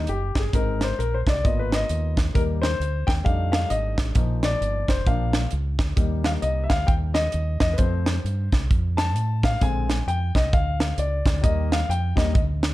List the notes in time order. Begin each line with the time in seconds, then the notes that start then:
0.07 F#1 G4, closed hi-hat
0.35 G1, kick, snare, closed hi-hat
0.39 G#4
0.53 G#1 G#3 C4 D#4 A#4, kick, closed hi-hat
0.81 C5, snare, closed hi-hat
0.99 A#1 A#4, closed hi-hat
1.14 C5
1.27 C2 D5, kick, snare, closed hi-hat
1.44 G#1 A#3 B3 F4 D#5, kick, closed hi-hat
1.59 B4
1.72 D#5, snare, closed hi-hat
1.89 D#2, closed hi-hat
2.17 kick, snare, closed hi-hat
2.34 D#2 G3 A#3 D#4 A#4, kick, closed hi-hat
2.62 C5, snare, closed hi-hat
2.80 D2, closed hi-hat
3.07 D#2 G5, kick, snare, closed hi-hat
3.24 F2 G3 A3 D4 D#4 F5, kick, closed hi-hat
3.52 F5, snare, closed hi-hat
3.70 G#1 D#5, closed hi-hat
3.98 A1, kick, snare, closed hi-hat
4.15 A#1 F3 A#3 D#4, kick, closed hi-hat
4.43 D5, snare, closed hi-hat
4.61 G1, closed hi-hat
4.88 F1 C5, kick, snare, closed hi-hat
5.07 A#1 F3 A#3 D4 F5, kick, closed hi-hat
5.33 snare, closed hi-hat
5.51 C#2, closed hi-hat
5.78 D2, kick, snare, closed hi-hat
5.96 D#2 G3 A#3 D#4, kick, closed hi-hat
6.24 F5, snare, closed hi-hat
6.42 C2 D#5, closed hi-hat
6.64 E5
6.70 D2 F5, kick, snare, closed hi-hat
6.87 D#2 G5, kick, closed hi-hat
7.14 D#5, snare, closed hi-hat
7.32 D#2, closed hi-hat
7.60 E2 D#5, kick, snare, closed hi-hat
7.73 B4
7.78 F2 F3 A3 C4 C5, kick, closed hi-hat
8.06 snare, closed hi-hat
8.24 G2, closed hi-hat
8.52 C2, kick, snare, closed hi-hat
8.71 F2, kick, closed hi-hat
8.97 A5, snare, closed hi-hat
9.16 A2, closed hi-hat
9.43 F5, kick, snare, closed hi-hat
9.61 A#1 D3 G#3 C4 G#5, kick, closed hi-hat
9.90 snare, closed hi-hat
10.07 F2 G5, closed hi-hat
10.35 C2 D#5, kick, snare, closed hi-hat
10.53 D2 F5, kick, closed hi-hat
10.80 snare, closed hi-hat
10.98 C#2 D5, closed hi-hat
11.25 D2, kick, snare, closed hi-hat
11.42 D#2 D#3 G3 A#3 D#5, kick, closed hi-hat
11.72 F5, snare, closed hi-hat
11.89 F2 G5, closed hi-hat
12.15 D#2 D#3 G3 A#3 D#5, kick, snare, closed hi-hat
12.34 D2 D#5, kick, closed hi-hat
12.63 snare, closed hi-hat